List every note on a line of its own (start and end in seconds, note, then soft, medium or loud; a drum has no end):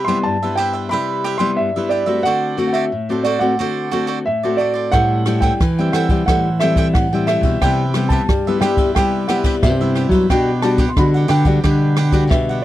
0.00 0.22 C3 medium
0.05 0.36 G3 medium
0.05 0.36 B3 medium
0.05 0.37 E4 medium
0.05 0.17 G4 medium
0.05 0.17 C5 medium
0.05 0.24 C6 medium
0.09 0.18 B4 medium
0.09 0.18 E5 medium
0.23 0.89 G2 medium
0.23 0.55 A5 loud
0.43 0.87 G3 medium
0.43 0.88 B3 medium
0.43 0.88 E4 medium
0.43 0.58 B4 soft
0.43 0.57 C5 soft
0.43 0.58 E5 soft
0.56 0.74 G4 medium
0.56 0.73 B4 medium
0.56 0.74 C5 medium
0.56 0.88 G5 medium
0.60 0.72 E5 medium
0.73 0.90 B4 soft
0.73 0.91 C5 soft
0.73 0.90 E5 soft
0.89 1.56 C3 medium
0.89 1.37 G3 medium
0.89 1.37 E4 medium
0.89 1.23 G4 medium
0.89 1.25 B4 medium
0.89 1.24 C5 medium
0.89 1.42 B5 loud
0.93 1.25 E5 medium
1.24 1.38 G4 medium
1.24 1.39 B4 medium
1.24 1.39 C5 medium
1.24 1.39 E5 medium
1.38 1.69 G3 medium
1.38 1.70 B3 medium
1.38 1.70 E4 medium
1.38 1.50 G4 medium
1.38 1.50 B4 medium
1.38 1.50 C5 medium
1.38 1.51 E5 medium
1.38 1.57 C6 medium
1.57 2.22 G2 medium
1.57 1.92 E5 medium
1.76 2.04 G3 medium
1.76 2.04 B3 medium
1.76 2.05 E4 medium
1.76 1.90 B4 soft
1.76 1.90 C5 soft
1.76 1.91 E5 medium
1.89 2.07 G4 medium
1.89 2.06 B4 medium
1.89 2.07 C5 soft
1.89 2.25 D5 medium
1.89 2.05 E5 medium
2.06 2.56 A3 medium
2.06 2.56 C4 medium
2.06 2.57 F#4 medium
2.06 2.24 B4 soft
2.06 2.24 C5 soft
2.06 2.23 E5 soft
2.23 2.89 D3 medium
2.23 2.57 F#4 medium
2.23 2.57 A4 medium
2.23 2.58 C5 medium
2.23 2.65 F#5 loud
2.27 2.59 D5 medium
2.57 2.90 A3 medium
2.57 2.90 C4 medium
2.57 2.72 F#4 soft
2.57 2.90 F#4 medium
2.57 2.73 A4 medium
2.57 2.73 C5 medium
2.57 2.74 D5 medium
2.67 2.75 F#5 medium
2.73 2.84 F#4 medium
2.73 2.84 A4 medium
2.73 2.84 C5 medium
2.73 2.84 D5 medium
2.73 3.21 E5 medium
2.92 3.56 A2 medium
3.09 3.38 A3 medium
3.09 3.38 C4 medium
3.09 3.38 F#4 medium
3.09 3.24 A4 soft
3.09 3.25 C5 soft
3.09 3.25 D5 soft
3.24 3.41 F#4 medium
3.24 3.41 A4 medium
3.24 3.40 C5 medium
3.24 3.42 D5 medium
3.24 3.39 D5 medium
3.39 3.53 A3 medium
3.39 3.54 C4 medium
3.39 3.54 F#4 medium
3.39 3.58 A4 soft
3.39 3.58 C5 soft
3.39 3.57 D5 soft
3.39 4.27 F#5 medium
3.59 4.23 D3 medium
3.59 3.88 A3 soft
3.59 3.88 C4 medium
3.59 3.90 F#4 medium
3.59 3.88 F#4 medium
3.59 3.91 A4 medium
3.59 3.92 C5 medium
3.59 3.92 D5 medium
3.91 4.24 A3 medium
3.91 4.24 C4 medium
3.91 4.06 F#4 medium
3.91 4.25 F#4 medium
3.91 4.07 A4 medium
3.91 4.07 C5 medium
3.91 4.07 D5 medium
4.07 4.18 F#4 medium
4.07 4.18 A4 medium
4.07 4.18 C5 medium
4.07 4.18 D5 medium
4.26 4.90 A2 medium
4.26 4.61 E5 medium
4.43 4.89 A3 medium
4.43 4.89 C4 medium
4.43 4.89 F#4 medium
4.43 4.58 A4 soft
4.43 4.59 C5 soft
4.43 4.59 D5 soft
4.57 4.75 F#4 soft
4.57 4.75 A4 soft
4.57 4.74 C5 soft
4.57 4.90 D5 medium
4.57 4.72 D5 medium
4.74 4.91 A4 soft
4.74 4.92 C5 soft
4.74 4.91 D5 soft
4.92 5.51 A2 medium
4.92 5.57 A2 medium
4.92 5.22 G3 medium
4.92 5.22 C4 medium
4.92 5.22 E4 medium
4.92 5.25 A4 medium
4.92 5.26 C5 medium
4.92 5.26 E5 medium
4.92 5.44 F#5 loud
4.92 kick medium
4.92 cross-stick medium
4.92 ride soft
5.26 5.58 G3 medium
5.26 5.58 C4 medium
5.26 5.59 E4 medium
5.26 5.41 A4 soft
5.26 5.42 C5 medium
5.26 5.42 E5 medium
5.26 5.42 G5 medium
5.26 cross-stick medium
5.26 ride soft
5.40 5.52 A4 medium
5.40 5.52 C5 medium
5.40 5.53 E5 medium
5.40 5.94 G5 medium
5.40 5.53 G5 medium
5.40 kick medium
5.40 ride soft
5.60 5.89 E3 medium
5.60 6.25 E3 medium
5.60 kick medium
5.60 cross-stick medium
5.60 ride soft
5.79 6.06 G3 medium
5.79 6.06 C4 medium
5.79 6.06 E4 medium
5.79 5.94 C5 soft
5.79 5.94 E5 soft
5.79 5.93 G5 soft
5.92 6.22 E3 medium
5.92 6.10 A4 medium
5.92 6.10 C5 medium
5.92 6.10 E5 medium
5.92 6.24 F#5 medium
5.92 6.09 G5 medium
5.92 cross-stick medium
5.92 ride soft
6.09 6.22 G3 medium
6.09 6.22 C4 medium
6.09 6.22 E4 medium
6.09 6.27 C5 soft
6.09 6.27 E5 soft
6.09 6.26 G5 soft
6.09 kick medium
6.09 ride soft
6.26 6.92 A2 medium
6.26 6.95 E3 medium
6.26 6.48 G3 medium
6.26 6.48 C4 medium
6.26 6.48 E4 medium
6.26 6.60 A4 medium
6.26 6.60 C5 medium
6.26 6.61 F#5 medium
6.26 kick medium
6.26 cross-stick medium
6.26 ride soft
6.30 6.61 E5 medium
6.60 7.06 G3 medium
6.60 7.07 C4 medium
6.60 7.07 E4 medium
6.60 6.76 A4 medium
6.60 6.76 C5 medium
6.60 6.95 E5 medium
6.60 6.77 E5 medium
6.60 6.77 G5 medium
6.60 cross-stick medium
6.60 ride soft
6.76 6.87 A4 medium
6.76 6.87 C5 medium
6.76 6.87 E5 medium
6.76 6.87 G5 medium
6.76 kick medium
6.76 ride soft
6.94 7.38 A2 medium
6.94 7.59 E3 medium
6.94 7.29 F#5 medium
6.94 kick medium
6.94 cross-stick medium
6.94 ride soft
7.13 7.57 G3 medium
7.13 7.58 C4 medium
7.13 7.58 E4 medium
7.13 7.27 C5 soft
7.13 7.27 E5 soft
7.13 7.28 G5 soft
7.27 7.43 A4 soft
7.27 7.44 C5 soft
7.27 7.59 E5 medium
7.27 7.43 E5 medium
7.27 7.42 G5 medium
7.27 cross-stick medium
7.27 ride soft
7.41 7.57 B2 medium
7.41 7.60 E5 soft
7.41 7.59 G5 soft
7.41 kick medium
7.41 ride soft
7.45 7.61 C5 soft
7.61 8.19 C3 medium
7.61 8.26 C3 medium
7.61 7.82 G3 medium
7.61 7.83 B3 medium
7.61 7.83 E4 medium
7.61 7.94 G4 medium
7.61 7.95 B4 medium
7.61 7.95 C5 medium
7.61 7.96 E5 medium
7.61 8.08 G5 loud
7.61 kick medium
7.61 cross-stick medium
7.61 ride soft
7.94 8.27 G3 medium
7.94 8.27 B3 medium
7.94 8.27 E4 medium
7.94 8.11 G4 medium
7.94 8.11 B4 medium
7.94 8.11 C5 medium
7.94 8.12 E5 medium
7.94 cross-stick medium
7.94 ride medium
8.09 8.21 G4 medium
8.09 8.21 B4 medium
8.09 8.21 C5 medium
8.09 8.62 A5 medium
8.09 kick medium
8.09 ride medium
8.13 8.22 E5 medium
8.29 8.93 G2 medium
8.29 8.57 G3 medium
8.29 kick medium
8.29 cross-stick medium
8.29 ride soft
8.47 8.91 G3 medium
8.47 8.92 B3 medium
8.47 8.92 E4 medium
8.47 8.62 B4 soft
8.47 8.62 C5 soft
8.47 8.62 E5 medium
8.61 8.90 G3 medium
8.61 8.78 G4 medium
8.61 8.78 B4 medium
8.61 8.78 C5 medium
8.61 8.77 E5 medium
8.61 8.93 G5 medium
8.61 cross-stick medium
8.61 ride medium
8.77 8.95 B4 soft
8.77 8.95 C5 soft
8.77 8.94 E5 soft
8.77 kick medium
8.77 ride medium
8.95 9.60 C3 medium
8.95 9.63 G3 loud
8.95 9.25 G3 medium
8.95 9.25 B3 medium
8.95 9.25 E4 medium
8.95 9.28 G4 medium
8.95 9.29 B4 medium
8.95 9.28 C5 medium
8.95 9.30 G5 medium
8.95 kick medium
8.95 cross-stick medium
8.95 ride medium
8.99 9.30 E5 medium
9.28 9.74 G3 medium
9.28 9.74 B3 medium
9.28 9.74 E4 medium
9.28 9.43 G4 medium
9.28 9.45 B4 medium
9.28 9.44 C5 medium
9.28 9.45 E5 medium
9.28 9.36 F#5 medium
9.28 cross-stick medium
9.28 ride soft
9.44 9.55 G4 medium
9.44 9.55 B4 medium
9.44 9.55 C5 medium
9.44 9.55 E5 medium
9.44 kick medium
9.44 ride soft
9.63 10.27 G2 medium
9.63 10.06 C3 medium
9.63 10.10 E5 medium
9.63 kick medium
9.63 cross-stick medium
9.63 ride medium
9.81 10.25 G3 medium
9.81 10.25 B3 medium
9.81 10.26 E4 medium
9.81 9.96 B4 soft
9.81 9.96 C5 soft
9.81 9.96 E5 medium
9.95 10.12 G4 soft
9.95 10.12 B4 medium
9.95 10.12 C5 soft
9.95 10.11 E5 medium
9.95 cross-stick medium
9.95 ride soft
10.09 10.25 F#3 medium
10.09 10.29 B4 soft
10.09 10.28 E5 soft
10.09 kick medium
10.09 ride soft
10.14 10.29 C5 soft
10.30 10.87 B2 loud
10.30 10.94 B2 medium
10.30 10.50 G3 medium
10.30 10.62 D4 medium
10.30 10.51 D4 medium
10.30 10.51 F#4 medium
10.30 10.63 G4 medium
10.30 10.63 B4 medium
10.30 10.65 G5 loud
10.30 kick medium
10.30 cross-stick medium
10.30 ride soft
10.62 10.83 G3 medium
10.62 10.77 D4 medium
10.62 10.83 D4 medium
10.62 10.84 F#4 medium
10.62 10.78 G4 medium
10.62 10.78 B4 medium
10.62 10.79 F#5 medium
10.62 10.69 A5 medium
10.62 cross-stick medium
10.62 ride soft
10.78 10.88 D4 medium
10.78 10.89 G4 medium
10.78 10.89 B4 medium
10.78 10.89 F#5 medium
10.78 kick medium
10.78 ride soft
10.89 10.97 C6 medium
10.97 11.61 B2 medium
10.97 11.25 D3 medium
10.97 11.29 G3 medium
10.97 11.29 D4 soft
10.97 11.30 F#4 medium
10.97 11.04 B5 medium
10.97 kick medium
10.97 cross-stick medium
10.97 ride soft
11.14 11.28 G4 soft
11.14 11.29 B4 soft
11.14 11.29 F#5 medium
11.28 11.59 D3 loud
11.28 11.45 D4 medium
11.28 11.45 G4 medium
11.28 11.45 B4 medium
11.28 11.44 F#5 medium
11.28 12.33 G5 loud
11.28 cross-stick medium
11.28 ride soft
11.45 11.58 G3 medium
11.45 11.58 D4 medium
11.45 11.59 F#4 medium
11.45 11.63 G4 soft
11.45 11.62 B4 soft
11.45 11.62 F#5 soft
11.45 kick medium
11.45 ride soft
11.64 12.28 B2 medium
11.64 12.31 D3 medium
11.64 11.96 G3 medium
11.64 11.95 D4 medium
11.64 11.96 D4 medium
11.64 11.96 G4 medium
11.64 11.97 B4 medium
11.64 kick medium
11.64 cross-stick medium
11.64 ride soft
11.96 12.12 D4 medium
11.96 12.12 G4 medium
11.96 12.13 B4 medium
11.96 12.13 F#5 medium
11.96 cross-stick medium
11.96 ride soft
12.12 12.58 G3 medium
12.12 12.59 D4 medium
12.12 12.23 D4 medium
12.12 12.59 F#4 medium
12.12 12.23 G4 medium
12.12 12.23 B4 medium
12.12 12.23 F#5 medium
12.12 kick medium
12.12 ride soft
12.30 12.64 B2 loud
12.30 12.64 B2 medium
12.30 12.64 E5 medium
12.30 kick medium
12.30 cross-stick medium
12.30 ride soft
12.49 12.64 G4 soft
12.49 12.64 B4 soft
12.49 12.64 F#5 soft